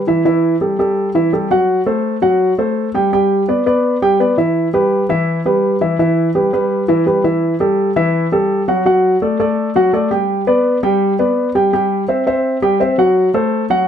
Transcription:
0.07 E3 E4 E5
0.25 E3 E4 E5
0.61 G3 G4 A4
0.79 G3 G4 A4
1.15 E3 E4 E5
1.33 G3 G4 A4
1.51 F#3 F#4 F#5
1.86 A3 A4 C5
2.22 F#3 F#4 F#5
2.58 A3 A4 C5
2.94 G3 G4 G5
3.13 G3 G4 G5
3.48 B3 B4 D5
3.66 B3 B4 D5
4.02 G3 G4 G5
4.20 B3 B4 D5
4.38 E3 E4 E5
4.73 G3 G4 B4
5.09 E3 E4 E5
5.45 G3 G4 B4
5.81 E3 E4 E5
5.99 E3 E4 E5
6.35 G3 G4 B4
6.53 G3 G4 B4
6.88 E3 E4 E5
7.06 G3 G4 B4
7.24 E3 E4 E5
7.60 G3 G4 A4
7.96 E3 E4 E5
8.32 G3 G4 A4
8.68 F#3 F#4 F#5
8.86 F#3 F#4 F#5
9.22 A3 A4 D5
9.40 A3 A4 D5
9.75 F#3 F#4 F#5
9.93 A3 A4 D5
10.11 G3 G4 G5
10.47 B3 B4 D5
10.83 G3 G4 G5
11.19 B3 B4 D5
11.55 G3 G4 G5
11.73 G3 G4 G5
12.08 C4 C5 E5
12.27 C4 C5 E5
12.62 G3 G4 G5
12.80 C4 C5 E5
12.98 F#3 F#4 F#5
13.34 A3 A4 C5
13.70 F#3 F#4 F#5

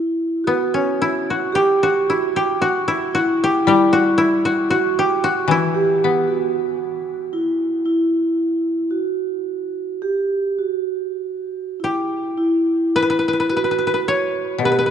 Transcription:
Already playing: E4
0.44 B3 F#4
0.74 C#4
1.02 E4
1.30 F#4
1.52 G4
1.83 F#4
2.07 E4 F#4
2.36 G4
2.62 F#4
2.88 E4
3.13 E4 F#4
3.44 G4
3.65 G3 E4 G4
3.93 F#4
4.18 E4
4.45 F#4
4.69 F#4
4.99 G4
5.24 F#4
5.48 E3 E4
5.74 G4
6.04 B3
6.28 F#4
7.33 E4
7.85 E4
8.91 F#4
10.02 G4
10.59 F#4
11.80 E4
11.84 G4
12.38 E4
12.96 B4
13.02 B4
13.10 B4
13.19 B4
13.28 B4
13.33 B4
13.40 B4
13.49 F#4 B4
13.57 B4
13.64 B4
13.71 B4
13.78 B4
13.87 B4
13.94 B4
14.08 C#5
14.58 B2 G4
14.65 B4
14.72 B4
14.79 B4
14.86 B4

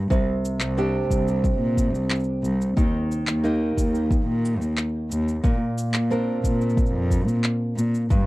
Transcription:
Already playing: A#3 D4 A#4
0.10 C2 C3, kick, shaker
0.45 shaker
0.60 C2, clap, shaker
0.77 C4 D4 G4, shaker
1.10 C2, kick, shaker
1.28 shaker
1.44 kick, shaker
1.60 A#2
1.77 kick, shaker
1.94 C2, shaker
2.10 clap, shaker
2.15 shaker
2.20 shaker
2.24 shaker
2.44 C2, shaker
2.61 shaker
2.77 D#2 D#3, kick, shaker
3.11 shaker
3.27 D#2, clap, shaker
3.44 A#3 D#4 G4, shaker
3.77 D#2, kick, shaker
3.95 shaker
4.11 kick, shaker
4.27 A#2
4.45 shaker
4.60 D#2, shaker
4.77 clap, shaker
5.10 D#2, shaker
5.28 shaker
5.44 A#2, kick, shaker
5.78 shaker
5.93 A#2, clap, shaker
6.10 C4 D4 A#4, shaker
6.44 A#2, kick, shaker
6.61 shaker
6.70 shaker
6.77 kick, shaker
6.86 shaker
6.94 F2
7.11 kick, shaker
7.27 A#2, shaker
7.44 clap, shaker
7.77 A#2, shaker
7.95 shaker
8.10 G2, kick, shaker

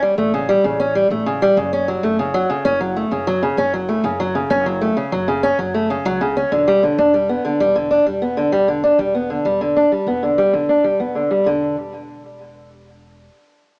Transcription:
0.02 G3
0.18 A1 A3
0.34 C#3
0.49 G3
0.64 A1 C#3
0.80 C#4
0.95 G3
1.10 A1 A3
1.26 C#3
1.42 G3
1.57 F#1 C#3
1.73 C#4
1.88 F#3
2.03 F#1 A3
2.19 C#3
2.34 F#3
2.50 C#3
2.65 F#1 C#4
2.80 F#3
2.96 A3
3.11 F#1 C#3
3.27 F#3
3.43 C#3
3.57 F#1 C#4
3.73 F#3
3.89 A3
4.04 F#1 C#3
4.20 F#3
4.35 C#3
4.50 F#1 C#4
4.66 F#3
4.81 A3
4.97 C#3
5.12 F#1 F#3
5.28 C#3
5.43 C#4
5.59 F#1 F#3
5.74 A3
5.90 C#3
6.05 C#2 F#3
6.21 C#3
6.37 C#4
6.52 E1 D3
6.68 G3
6.83 D3
6.98 E1 D4
7.14 G3
7.29 B3
7.45 D3
7.60 E1 G3
7.76 D3
7.91 D4
8.06 E1 G3
8.22 B3
8.37 D3
8.52 E1 G3
8.68 D3
8.84 D4
8.99 E1 G3
9.15 B3
9.30 D3
9.45 E1 G3
9.61 D3
9.76 D4
9.92 G3
10.07 E1 B3
10.23 D3
10.38 G3
10.53 E1 D3
10.69 D4
10.84 G3
11.00 E1 B3
11.15 D3
11.31 G3
11.46 E1 D3

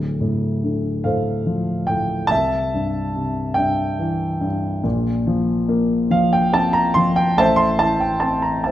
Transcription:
Already playing: D1 D2
0.21 A2
0.64 D3
1.04 A2 A4 C5 F5
1.46 F3
1.87 A2 G5
2.27 C2 E5 A5
2.74 G2
3.16 C3
3.54 G2 G5
3.58 E5
3.99 E3
4.41 G2
4.84 A#1 A#2
5.27 F3
5.68 A#3
6.11 F3 F5
6.33 G5
6.52 C4 A5
6.73 A#5
6.94 F3 C6
7.16 G5
7.38 A1 A2 C5 E5 A5
7.56 C6
7.79 E3 A5
8.00 G5
8.20 C4 A5
8.42 A#5
8.64 E3 C5 E5 A5

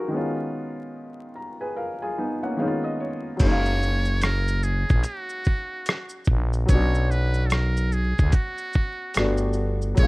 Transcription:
Already playing: D#4 F4 F#4 G#4 A#4
0.08 D#3 G#3
0.12 B3 C#4
0.16 F4
1.35 A#5
1.61 G#4 B4 G#5
1.76 A#4 F5
2.02 F4 G#4 G#5
2.18 B3 D#4
2.43 A#3 C#4 F#5
2.57 D#3 G#3 B3 C#4 F5
2.61 D#4
2.67 F4
2.84 D#5
3.00 C#5
3.37 F#3 G#3, kick, closed hi-hat, crash, shaker
3.41 F#1 A#3 C#4 C#5
3.45 D#4
3.51 F5
3.66 shaker
3.83 shaker
4.05 shaker
4.21 A#4, cross-stick, closed hi-hat, shaker
4.48 shaker
4.63 G#4, shaker
4.89 A#1, kick, shaker
5.04 F#4, closed hi-hat, shaker
5.29 shaker
5.45 kick, shaker
5.86 cross-stick, closed hi-hat, shaker
6.09 shaker
6.25 A#1, kick, shaker
6.53 shaker
6.66 B1 F#3 B3 C#5, kick, closed hi-hat, shaker
6.70 C#4 D4
6.74 F#4
6.95 shaker
7.11 B4, shaker
7.34 shaker
7.46 A4, closed hi-hat, shaker
7.52 A#4, cross-stick
7.77 shaker
7.92 G#4, shaker
8.18 D2, kick, shaker
8.32 F#4, kick, closed hi-hat, shaker
8.58 shaker
8.73 kick, shaker
9.14 G1 G3 A3 B3 D4, cross-stick, closed hi-hat, shaker
9.19 F#4
9.37 shaker
9.53 shaker
9.82 shaker
9.95 A#1 F#3 G#3, kick, closed hi-hat, shaker
9.99 A#2 C#4 C#5
10.03 F5

